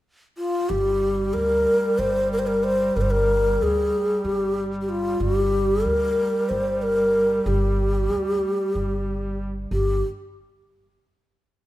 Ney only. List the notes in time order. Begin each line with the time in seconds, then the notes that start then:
0.37 F4
0.69 G4
1.34 A#4
1.99 C5
2.33 A#4
2.39 C5
2.47 A#4
2.64 C5
2.97 A#4
3.01 C5
3.11 A#4
3.63 G#4
4.25 G4
4.82 G4
4.89 F4
5.21 G4
5.85 A#4
6.49 C5
6.82 A#4
7.47 G4
9.72 G4